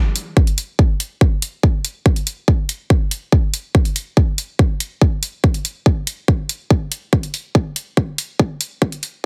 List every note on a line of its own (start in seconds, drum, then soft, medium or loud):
0.16 closed hi-hat medium
0.37 kick medium
0.47 closed hi-hat soft
0.58 closed hi-hat medium
0.79 kick medium
1.00 closed hi-hat medium
1.21 kick loud
1.42 closed hi-hat medium
1.63 kick loud
1.85 closed hi-hat medium
2.06 kick loud
2.16 closed hi-hat soft
2.27 closed hi-hat medium
2.48 kick medium
2.69 closed hi-hat medium
2.90 kick loud
3.11 closed hi-hat medium
3.32 kick medium
3.54 closed hi-hat medium
3.75 kick medium
3.85 closed hi-hat soft
3.96 closed hi-hat medium
4.17 kick loud
4.38 closed hi-hat medium
4.59 kick medium
4.80 closed hi-hat medium
5.01 kick loud
5.23 closed hi-hat medium
5.44 kick loud
5.54 closed hi-hat soft
5.65 closed hi-hat medium
5.86 kick medium
6.07 closed hi-hat medium
6.28 kick loud
6.49 closed hi-hat medium
6.70 kick loud
6.92 closed hi-hat medium
7.13 kick loud
7.23 closed hi-hat soft
7.34 open hi-hat medium
7.55 kick loud
7.76 closed hi-hat medium
7.97 kick loud
8.18 open hi-hat medium
8.39 kick loud
8.61 closed hi-hat medium
8.82 kick loud
8.92 closed hi-hat soft
9.03 open hi-hat medium